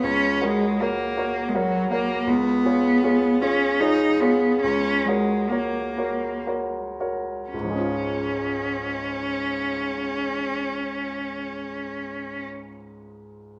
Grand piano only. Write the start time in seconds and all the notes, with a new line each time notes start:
0.03 C#2
0.41 F#4 A#4 C#5
0.81 F#4 A#4 C#5
1.17 F#4 A#4 C#5
1.54 F#4 A#4 C#5
1.91 F#4 A#4 C#5
2.27 C#2
2.65 F4 G#4 C#5
3.03 F4 G#4 C#5
3.41 F4 G#4 C#5
3.80 F4 G#4 C#5
4.21 F4 G#4 C#5
4.64 C#2
5.08 F#4 A#4 C#5
5.51 F#4 A#4 C#5
5.97 F#4 A#4 C#5
6.47 F#4 A#4 C#5
7.00 F#4 A#4 C#5
7.54 C#2
7.59 G#2
7.64 F3
7.70 G#3
7.75 C#4
7.80 F4